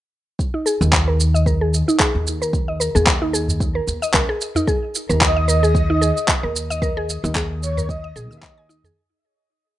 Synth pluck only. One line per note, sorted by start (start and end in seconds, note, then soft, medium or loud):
0.54 0.65 D#4 medium
0.66 1.06 G#4 medium
1.08 1.33 A#4 medium
1.34 1.46 D#5 medium
1.46 1.60 A#4 medium
1.61 1.72 G#4 medium
1.88 1.99 D#4 medium
2.00 2.40 G#4 medium
2.42 2.67 A#4 medium
2.68 2.79 D#5 medium
2.80 2.94 A#4 medium
2.95 3.06 G#4 medium
3.22 3.33 D#4 medium
3.33 3.74 G#4 medium
3.75 4.01 A#4 medium
4.02 4.13 D#5 loud
4.14 4.28 A#4 medium
4.29 4.40 G#4 loud
4.56 4.67 D#4 medium
4.67 5.08 G#4 medium
5.09 5.35 A#4 medium
5.36 5.48 D#5 loud
5.48 5.62 A#4 medium
5.63 5.74 G#4 medium
5.90 6.01 D#4 medium
6.01 6.42 G#4 medium
6.43 6.69 A#4 medium
6.70 6.81 D#5 loud
6.82 6.96 A#4 medium
6.97 7.08 G#4 loud
7.24 7.35 D#4 medium
7.35 7.76 G#4 medium
7.77 8.03 A#4 medium
8.04 8.15 D#5 medium
8.16 8.24 G#4 loud
8.31 8.42 D#6 medium
8.58 8.68 G#5 medium
8.69 8.84 D#4 medium
8.85 8.91 G#4 medium